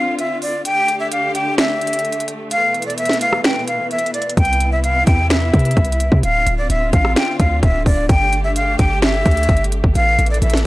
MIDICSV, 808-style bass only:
0, 0, Header, 1, 2, 480
1, 0, Start_track
1, 0, Tempo, 465116
1, 672, Time_signature, 4, 2, 24, 8
1, 11005, End_track
2, 0, Start_track
2, 0, Title_t, "808-style bass"
2, 0, Program_c, 0, 38
2, 4512, Note_on_c, 0, 36, 113
2, 5203, Note_off_c, 0, 36, 0
2, 5233, Note_on_c, 0, 40, 106
2, 5694, Note_off_c, 0, 40, 0
2, 5713, Note_on_c, 0, 48, 108
2, 5943, Note_off_c, 0, 48, 0
2, 5952, Note_on_c, 0, 36, 106
2, 6298, Note_off_c, 0, 36, 0
2, 6314, Note_on_c, 0, 48, 101
2, 6428, Note_off_c, 0, 48, 0
2, 6433, Note_on_c, 0, 26, 112
2, 6663, Note_off_c, 0, 26, 0
2, 6672, Note_on_c, 0, 26, 105
2, 6903, Note_off_c, 0, 26, 0
2, 6912, Note_on_c, 0, 26, 112
2, 7143, Note_off_c, 0, 26, 0
2, 7154, Note_on_c, 0, 33, 105
2, 7383, Note_off_c, 0, 33, 0
2, 7633, Note_on_c, 0, 38, 108
2, 7863, Note_off_c, 0, 38, 0
2, 7872, Note_on_c, 0, 26, 106
2, 8103, Note_off_c, 0, 26, 0
2, 8112, Note_on_c, 0, 26, 107
2, 8342, Note_off_c, 0, 26, 0
2, 8352, Note_on_c, 0, 31, 114
2, 9043, Note_off_c, 0, 31, 0
2, 9073, Note_on_c, 0, 31, 105
2, 9533, Note_off_c, 0, 31, 0
2, 9552, Note_on_c, 0, 38, 105
2, 9783, Note_off_c, 0, 38, 0
2, 9792, Note_on_c, 0, 31, 105
2, 10137, Note_off_c, 0, 31, 0
2, 10153, Note_on_c, 0, 31, 105
2, 10268, Note_off_c, 0, 31, 0
2, 10272, Note_on_c, 0, 33, 110
2, 10503, Note_off_c, 0, 33, 0
2, 10512, Note_on_c, 0, 33, 105
2, 10743, Note_off_c, 0, 33, 0
2, 10752, Note_on_c, 0, 33, 114
2, 10983, Note_off_c, 0, 33, 0
2, 11005, End_track
0, 0, End_of_file